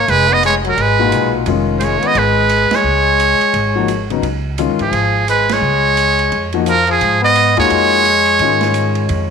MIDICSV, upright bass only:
0, 0, Header, 1, 3, 480
1, 0, Start_track
1, 0, Tempo, 346821
1, 115, Time_signature, 4, 2, 24, 8
1, 12875, End_track
2, 0, Start_track
2, 0, Title_t, "Upright bass"
2, 0, Program_c, 0, 32
2, 111, Note_on_c, 0, 29, 89
2, 1023, Note_off_c, 0, 29, 0
2, 1070, Note_on_c, 0, 32, 86
2, 1517, Note_off_c, 0, 32, 0
2, 1554, Note_on_c, 0, 35, 71
2, 1998, Note_off_c, 0, 35, 0
2, 2030, Note_on_c, 0, 29, 88
2, 2752, Note_off_c, 0, 29, 0
2, 2976, Note_on_c, 0, 32, 89
2, 3705, Note_off_c, 0, 32, 0
2, 3923, Note_on_c, 0, 37, 84
2, 4658, Note_off_c, 0, 37, 0
2, 4891, Note_on_c, 0, 32, 88
2, 5811, Note_off_c, 0, 32, 0
2, 5841, Note_on_c, 0, 37, 80
2, 6449, Note_off_c, 0, 37, 0
2, 6492, Note_on_c, 0, 41, 61
2, 6635, Note_off_c, 0, 41, 0
2, 6643, Note_on_c, 0, 44, 62
2, 6791, Note_off_c, 0, 44, 0
2, 6799, Note_on_c, 0, 32, 83
2, 7726, Note_off_c, 0, 32, 0
2, 7772, Note_on_c, 0, 37, 88
2, 8693, Note_off_c, 0, 37, 0
2, 8745, Note_on_c, 0, 41, 92
2, 9660, Note_off_c, 0, 41, 0
2, 9705, Note_on_c, 0, 44, 85
2, 10431, Note_off_c, 0, 44, 0
2, 10485, Note_on_c, 0, 39, 62
2, 10657, Note_off_c, 0, 39, 0
2, 10665, Note_on_c, 0, 41, 84
2, 11581, Note_off_c, 0, 41, 0
2, 11616, Note_on_c, 0, 44, 79
2, 12537, Note_off_c, 0, 44, 0
2, 12587, Note_on_c, 0, 41, 88
2, 12875, Note_off_c, 0, 41, 0
2, 12875, End_track
3, 0, Start_track
3, 0, Title_t, "Muted upright bass strokes"
3, 2807, Note_on_c, 9, 29, 34
3, 2945, Note_off_c, 9, 29, 0
3, 3752, Note_on_c, 9, 29, 38
3, 3891, Note_off_c, 9, 29, 0
3, 4700, Note_on_c, 9, 29, 34
3, 4838, Note_off_c, 9, 29, 0
3, 12875, End_track
0, 0, End_of_file